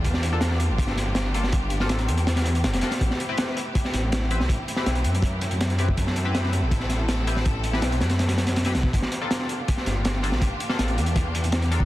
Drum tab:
HH |x-x-x-x-x-x-x-x-|x-x-xxxxxxxxxxxx|x-x-x-x-x-x-x-x-|x-x-xxxxx-xxxxx-|
SD |-o--oo---oo-o--o|---oo---oo--oooo|-o--oo---oo-o--o|---oo-------o---|
BD |o-------o-------|o---------------|o-------o-------|o-------o------o|

HH |x-x-x-x-x-x-x-x-|x-x-xxxxxxxxxxx-|x-x-x-x-x-x-x-x-|x-x-xxxxx-xxxxx-|
SD |-o--oo---oo-o--o|---oo-ooooooooo-|-o--oo---oo-o--o|---oo-------o---|
BD |o-------o-------|o--------------o|o-------o-------|o-------o------o|